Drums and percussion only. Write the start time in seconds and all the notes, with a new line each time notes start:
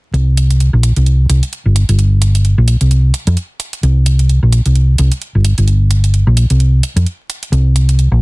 0.14 closed hi-hat
0.37 closed hi-hat
0.51 closed hi-hat
0.60 closed hi-hat
0.83 closed hi-hat
0.96 closed hi-hat
1.06 closed hi-hat
1.30 closed hi-hat
1.43 closed hi-hat
1.53 closed hi-hat
1.76 closed hi-hat
1.89 closed hi-hat
1.99 closed hi-hat
2.22 closed hi-hat
2.35 closed hi-hat
2.45 closed hi-hat
2.68 closed hi-hat
2.81 closed hi-hat
2.91 closed hi-hat
3.14 closed hi-hat
3.27 closed hi-hat
3.37 closed hi-hat
3.60 closed hi-hat
3.73 closed hi-hat
3.83 closed hi-hat
4.06 closed hi-hat
4.19 closed hi-hat
4.29 closed hi-hat
4.53 closed hi-hat
4.66 closed hi-hat
4.75 closed hi-hat
4.98 closed hi-hat
5.12 closed hi-hat
5.21 closed hi-hat
5.45 closed hi-hat
5.58 closed hi-hat
5.68 closed hi-hat
5.91 closed hi-hat
6.04 closed hi-hat
6.14 closed hi-hat
6.37 closed hi-hat
6.50 closed hi-hat
6.60 closed hi-hat
6.83 closed hi-hat
6.97 closed hi-hat
7.06 closed hi-hat
7.30 closed hi-hat
7.43 closed hi-hat
7.53 closed hi-hat
7.76 closed hi-hat
7.89 closed hi-hat
7.99 closed hi-hat